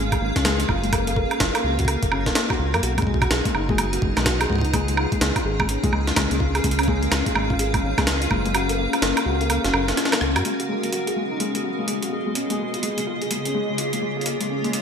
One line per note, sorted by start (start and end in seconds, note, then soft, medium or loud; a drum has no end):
0.00 0.18 G#1 medium
0.00 3.61 C#4 medium
0.00 1.70 G#4 medium
0.00 2.83 F5 medium
0.12 0.20 G#4 medium
0.12 kick loud
0.12 closed hi-hat medium
0.12 high woodblock medium
0.21 0.33 G#1 loud
0.21 0.27 G#3 medium
0.36 0.66 C#2 medium
0.36 0.41 C#4 medium
0.36 kick loud
0.36 snare medium
0.36 closed hi-hat soft
0.45 0.58 G#3 loud
0.45 snare loud
0.45 closed hi-hat medium
0.60 0.63 G#3 medium
0.60 closed hi-hat medium
0.69 1.26 F#1 loud
0.69 0.78 F4 medium
0.69 kick loud
0.69 high woodblock soft
0.84 0.92 G#3 medium
0.84 closed hi-hat soft
0.93 1.02 A#3 medium
0.93 kick loud
0.93 closed hi-hat medium
0.93 high woodblock medium
1.03 3.60 F#4 medium
1.07 1.13 A#3 medium
1.07 closed hi-hat medium
1.16 1.30 A#4 medium
1.16 kick loud
1.31 1.34 A#3 medium
1.31 closed hi-hat soft
1.31 high woodblock medium
1.40 1.52 F#1 medium
1.40 1.49 F4 medium
1.40 kick loud
1.40 snare loud
1.40 closed hi-hat medium
1.55 1.62 A#3 loud
1.55 closed hi-hat soft
1.55 high woodblock medium
1.64 1.97 C#2 medium
1.64 1.69 A#3 medium
1.79 1.84 F#4 medium
1.79 kick soft
1.79 kick medium
1.79 closed hi-hat soft
1.85 2.01 A#3 medium
1.85 kick medium
1.85 closed hi-hat medium
1.85 high woodblock medium
2.03 2.10 F#1 medium
2.03 2.08 A#3 medium
2.03 kick loud
2.03 closed hi-hat medium
2.12 2.31 F#1 loud
2.12 2.21 C#4 medium
2.12 high woodblock medium
2.26 2.34 A#3 medium
2.26 kick loud
2.26 snare medium
2.26 closed hi-hat soft
2.35 2.44 A#3 loud
2.35 snare loud
2.35 closed hi-hat medium
2.50 2.54 F#4 medium
2.50 kick loud
2.50 high woodblock medium
2.59 2.76 C#2 medium
2.59 2.68 F4 medium
2.74 2.81 F#2 loud
2.74 2.80 A#3 loud
2.74 closed hi-hat soft
2.74 high woodblock medium
2.83 3.27 B1 medium
2.83 5.39 D#4 medium
2.83 2.92 F#4 medium
2.83 closed hi-hat medium
2.98 3.05 G#3 medium
2.98 4.74 B4 medium
2.98 kick loud
2.98 closed hi-hat soft
2.98 high woodblock soft
3.02 kick medium
3.07 3.16 G#3 medium
3.07 kick medium
3.14 kick medium
3.22 3.27 F#4 medium
3.22 9.18 G#4 medium
3.22 kick loud
3.22 closed hi-hat soft
3.22 high woodblock medium
3.31 3.42 B1 medium
3.31 3.44 G#4 medium
3.31 snare loud
3.31 closed hi-hat medium
3.45 3.49 G#3 medium
3.45 kick loud
3.45 closed hi-hat medium
3.51 3.99 F#1 medium
3.51 3.64 D#4 medium
3.51 4.73 F#5 medium
3.51 high woodblock soft
3.69 3.77 G#3 loud
3.69 kick loud
3.78 3.84 G#3 medium
3.78 closed hi-hat medium
3.78 high woodblock medium
3.93 3.99 F#4 medium
3.93 closed hi-hat medium
4.02 4.14 F#1 loud
4.02 4.15 G#3 medium
4.02 kick loud
4.17 4.47 B1 medium
4.17 4.22 G#3 medium
4.17 snare medium
4.17 closed hi-hat soft
4.17 high woodblock medium
4.26 4.35 F#4 medium
4.26 kick loud
4.26 snare loud
4.26 closed hi-hat medium
4.41 4.49 G#4 medium
4.41 closed hi-hat medium
4.41 high woodblock medium
4.50 5.07 C#2 loud
4.50 4.55 G#3 medium
4.50 kick soft
4.53 kick medium
4.56 kick medium
4.59 kick medium
4.61 4.70 D#4 medium
4.61 kick medium
4.61 closed hi-hat soft
4.73 4.87 G#3 loud
4.73 11.22 C#4 medium
4.73 kick loud
4.73 closed hi-hat medium
4.73 high woodblock soft
4.88 4.92 G#3 medium
4.88 closed hi-hat soft
4.97 5.06 F4 medium
4.97 high woodblock medium
5.12 5.20 G#3 medium
5.12 kick loud
5.12 closed hi-hat soft
5.21 5.33 C#2 medium
5.21 5.30 G#3 medium
5.21 snare loud
5.21 closed hi-hat medium
5.27 6.64 A#4 medium
5.36 5.42 F4 medium
5.36 11.22 F5 medium
5.36 kick loud
5.36 closed hi-hat soft
5.36 high woodblock medium
5.45 5.78 G#1 medium
5.45 5.59 G#4 medium
5.60 5.63 G#3 medium
5.60 kick loud
5.60 high woodblock medium
5.69 5.78 C#4 medium
5.69 closed hi-hat medium
5.84 5.91 C#2 medium
5.84 5.91 G#3 loud
5.84 kick loud
5.84 closed hi-hat medium
5.92 6.12 C#2 medium
5.92 5.98 G#3 medium
5.92 high woodblock medium
6.07 6.13 F4 medium
6.07 snare medium
6.07 closed hi-hat soft
6.16 6.28 C#2 medium
6.16 6.30 G#3 medium
6.16 kick loud
6.16 snare loud
6.16 closed hi-hat medium
6.16 high woodblock medium
6.31 6.61 C#2 medium
6.31 6.37 G#3 medium
6.31 closed hi-hat medium
6.40 6.49 F4 medium
6.40 kick loud
6.55 6.63 G#4 medium
6.55 closed hi-hat soft
6.55 high woodblock medium
6.64 7.08 C#2 medium
6.64 6.69 G#3 medium
6.64 kick loud
6.64 closed hi-hat medium
6.71 closed hi-hat medium
6.79 6.84 C#4 medium
6.79 closed hi-hat medium
6.79 high woodblock medium
6.83 8.55 B4 medium
6.83 closed hi-hat soft
6.88 7.01 G#3 loud
6.88 kick loud
7.03 7.06 G#3 medium
7.03 closed hi-hat soft
7.12 7.23 C#2 medium
7.12 7.21 F4 medium
7.12 snare loud
7.12 closed hi-hat medium
7.12 high woodblock medium
7.26 7.34 G#3 medium
7.26 kick loud
7.26 closed hi-hat medium
7.35 7.80 G#1 medium
7.35 7.44 G#3 medium
7.35 high woodblock medium
7.50 7.56 F4 medium
7.50 kick loud
7.59 7.73 G#4 medium
7.59 closed hi-hat medium
7.74 7.77 G#3 medium
7.74 kick loud
7.74 closed hi-hat medium
7.74 high woodblock medium
7.83 7.95 G#1 loud
7.83 7.92 C#4 medium
7.98 8.27 C#2 medium
7.98 8.05 G#3 loud
7.98 kick loud
7.98 snare medium
7.98 closed hi-hat soft
7.98 high woodblock medium
8.07 8.12 G#3 medium
8.07 snare loud
8.07 closed hi-hat medium
8.22 8.27 F4 medium
8.22 closed hi-hat medium
8.31 8.88 F#1 medium
8.31 8.44 G#3 medium
8.31 kick loud
8.31 high woodblock medium
8.45 8.51 G#3 medium
8.45 closed hi-hat soft
8.55 8.64 F#4 medium
8.55 closed hi-hat medium
8.55 high woodblock medium
8.69 8.78 A#4 medium
8.69 closed hi-hat medium
8.78 8.84 A#3 medium
8.93 8.99 F4 medium
8.93 closed hi-hat soft
8.93 high woodblock medium
9.02 9.14 F#1 medium
9.02 9.15 A#3 loud
9.02 11.22 A#4 medium
9.02 snare loud
9.02 closed hi-hat medium
9.17 9.20 A#3 medium
9.17 closed hi-hat medium
9.17 high woodblock medium
9.23 9.59 C#2 medium
9.23 12.35 F#4 medium
9.23 9.35 F#4 medium
9.41 9.48 A#3 medium
9.41 closed hi-hat soft
9.50 9.59 A#3 medium
9.50 closed hi-hat medium
9.50 high woodblock medium
9.64 9.72 F#1 medium
9.64 9.70 F#4 medium
9.64 snare medium
9.64 closed hi-hat medium
9.73 9.93 F#1 loud
9.73 9.87 A#4 medium
9.73 high woodblock medium
9.88 9.92 A#3 medium
9.88 snare medium
9.88 closed hi-hat soft
9.97 10.06 F4 medium
9.97 cross-stick medium
9.97 snare medium
9.97 closed hi-hat medium
10.05 snare medium
10.12 10.20 A#3 loud
10.12 cross-stick medium
10.12 snare loud
10.12 closed hi-hat medium
10.12 high woodblock medium
10.21 10.38 C#2 medium
10.21 10.27 A#3 medium
10.21 cross-stick medium
10.36 10.43 F#2 loud
10.36 10.41 F#4 medium
10.36 cross-stick medium
10.36 closed hi-hat soft
10.36 high woodblock medium
10.45 10.50 G#3 medium
10.45 12.36 B3 medium
10.45 closed hi-hat medium
10.60 10.65 F#4 medium
10.60 closed hi-hat medium
10.69 10.82 G#3 medium
10.83 10.89 G#3 medium
10.83 closed hi-hat soft
10.93 11.02 F#4 medium
10.93 closed hi-hat medium
11.07 11.16 G#4 medium
11.07 closed hi-hat medium
11.16 11.22 G#3 medium
11.31 11.37 D#4 medium
11.31 14.82 G#4 medium
11.31 13.13 D#5 medium
11.40 11.53 G#3 medium
11.40 closed hi-hat medium
11.55 11.58 G#3 medium
11.55 closed hi-hat medium
11.64 11.73 F#4 medium
11.79 11.86 G#3 medium
11.88 11.97 G#3 medium
11.88 closed hi-hat medium
12.03 12.08 F#4 medium
12.03 closed hi-hat medium
12.12 12.25 G#4 medium
12.26 12.30 G#3 medium
12.35 14.26 C#3 medium
12.35 12.44 C#4 medium
12.35 closed hi-hat medium
12.50 12.58 G#3 loud
12.50 closed hi-hat medium
12.59 12.65 G#3 medium
12.74 12.80 F4 medium
12.74 closed hi-hat soft
12.83 12.96 G#3 medium
12.83 closed hi-hat medium
12.92 14.26 A#3 medium
12.98 13.03 G#3 medium
12.98 closed hi-hat medium
13.06 13.16 F4 medium
13.06 14.82 C#5 medium
13.22 14.82 F4 medium
13.22 13.30 G#4 medium
13.22 closed hi-hat soft
13.31 13.36 G#3 medium
13.31 closed hi-hat medium
13.45 13.51 C#4 medium
13.45 closed hi-hat medium
13.54 13.68 G#3 medium
13.69 13.73 G#3 medium
13.78 13.87 F4 medium
13.78 closed hi-hat medium
13.93 14.01 G#3 medium
13.93 closed hi-hat medium
14.02 14.11 G#3 medium
14.17 14.22 F4 medium
14.21 closed hi-hat soft
14.26 14.82 B3 medium
14.26 14.39 G#4 medium
14.26 closed hi-hat medium
14.41 14.44 G#3 medium
14.41 closed hi-hat medium
14.50 14.59 C#4 medium
14.64 14.72 G#3 medium
14.64 closed hi-hat soft
14.73 14.79 G#3 medium
14.73 closed hi-hat medium